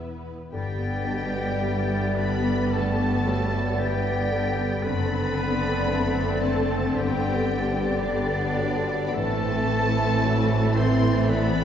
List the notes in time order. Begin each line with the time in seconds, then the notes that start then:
Already playing: E1 E2 B3 E4 B4
0.52 G1 G2 D3 G3 B3 G4 G5 A6
0.80 B3
1.06 B2 D4 B4
1.33 B3 D5
1.60 E3 G3 B5 A6
1.89 B3 D5
2.15 B3 D4 B4 B5
2.44 B3 D4
2.71 D3 G3 A3 A4 A5 A6
2.98 B3
3.26 F#3 D4 B4
3.53 B3 D5
3.78 D3 E3 G3 B3 G4 B5
3.82 G5
4.06 B3 D5
4.32 D3 D4 B4
4.58 B3 D4
4.83 F#1 F#2 D3 B3 C4 B4 B5 A6
4.87 A3 A4
5.12 C4
5.38 D4 A4 A6
5.66 C4 D5
5.91 E3 A3 A5 A6
6.19 C4 D5
6.42 A3 A4 A5
6.48 D4
6.71 C4 D4
6.94 G1 G2 D3 G3 B3 G4 G5 A6
7.00 G3 G4
7.23 B3
7.48 D4 G4 A6
7.74 B3 D5
7.98 D3 G3 B3 D4 D5 G5
8.28 B3 D5
8.57 F#3 D4 G4
8.85 B3 D4
9.07 B5
9.14 A1 A2 E3 A3 C4 E4 A4 A5 A6
9.43 A3 C4
9.70 A3 E4 A6
10.00 C4
10.24 F#3 A3 E5 A6
10.51 C4 C5
10.74 E3 C4 E4 C5 C6
10.79 A3
11.03 C4
11.27 D3 E3 A3 B3 B4 B5 A6
11.54 A3
11.58 C4